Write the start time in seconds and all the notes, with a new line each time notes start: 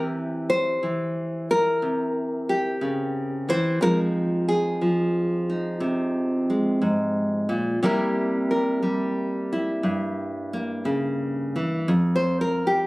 Already playing: C3 E3 E4 G4
0.50 C5
0.83 E3
1.51 A#4
1.82 C3
2.49 G4
2.81 C#3
3.49 E3 C5
3.81 F2 F3 G#3 D#4 A#4
4.48 G#4
4.81 F3
5.50 D#4
5.80 C3
6.50 G#3
6.82 G#2
7.49 A#2
7.83 C3 G3 A#3 E4 A#4
8.51 A#4
8.82 G3
9.53 E4
9.83 G2
10.53 A#3
10.85 C#3
11.56 E3
11.88 F2
12.16 C5
12.41 A#4
12.67 G4